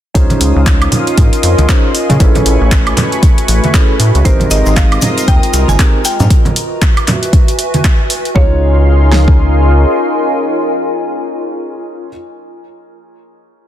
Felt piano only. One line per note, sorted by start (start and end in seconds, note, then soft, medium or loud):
0.14 1.66 C#4 medium
0.14 1.66 D#4 medium
0.14 1.66 F4 medium
0.14 1.67 G#4 medium
0.14 1.67 C5 loud
1.69 1.87 C#4 medium
1.69 1.87 D#4 medium
1.69 1.87 F4 medium
1.69 1.87 G#4 medium
1.69 1.87 C5 medium
2.20 3.71 C#4 loud
2.20 3.71 E4 medium
2.20 3.72 G#4 medium
2.20 3.72 A4 medium
2.20 3.72 B4 loud
3.74 3.92 C#4 medium
3.74 3.92 E4 medium
3.74 3.92 G#4 medium
3.74 3.92 A4 medium
3.74 3.92 B4 medium
4.25 5.76 C4 medium
4.25 5.77 D#4 medium
4.25 5.77 G4 medium
4.25 5.77 G#4 medium
4.25 5.77 A#4 loud
5.79 5.97 C4 medium
5.79 5.97 D#4 medium
5.79 5.97 G4 medium
5.79 5.97 G#4 medium
5.79 5.97 A#4 medium
8.35 12.09 C#4 medium
8.35 12.09 D#4 medium
8.35 12.10 F4 medium
8.35 12.10 G#4 medium
8.35 12.11 C#5 medium